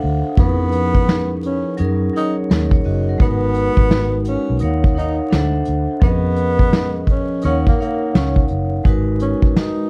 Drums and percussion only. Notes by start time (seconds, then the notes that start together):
0.00 open hi-hat
0.37 kick, closed hi-hat
0.72 closed hi-hat
0.95 kick
1.08 snare, closed hi-hat
1.43 closed hi-hat
1.77 closed hi-hat
2.17 closed hi-hat
2.51 snare, closed hi-hat
2.71 kick
2.83 open hi-hat
3.20 kick, closed hi-hat
3.54 closed hi-hat
3.77 kick
3.91 snare, closed hi-hat
4.25 closed hi-hat
4.59 closed hi-hat
4.84 kick
4.99 closed hi-hat
5.32 snare, closed hi-hat
5.65 closed hi-hat
6.02 kick, closed hi-hat
6.36 closed hi-hat
6.59 kick
6.73 snare, closed hi-hat
7.07 kick, closed hi-hat
7.41 closed hi-hat
7.67 kick
7.82 closed hi-hat
8.15 snare, closed hi-hat
8.36 kick
8.48 closed hi-hat
8.85 kick, closed hi-hat
9.20 closed hi-hat
9.42 kick
9.56 snare, closed hi-hat